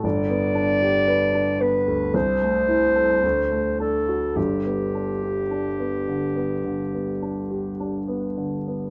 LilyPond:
<<
  \new Staff \with { instrumentName = "Clarinet" } { \time 4/4 \key g \major \tempo 4 = 53 d''4. b'8 c''4. a'8 | g'2.~ g'8 r8 | }
  \new Staff \with { instrumentName = "Grand piano" } { \time 4/4 \key g \major g,,16 b16 d'16 g'16 b'16 d'16 b16 d,16 c,16 a16 e'16 a'16 d,16 a16 d'16 fis'16 | <g,, g,>16 b16 d'16 g'16 d'16 b16 d16 b16 d16 b16 d'16 g'16 d'16 b16 d16 b16 | }
>>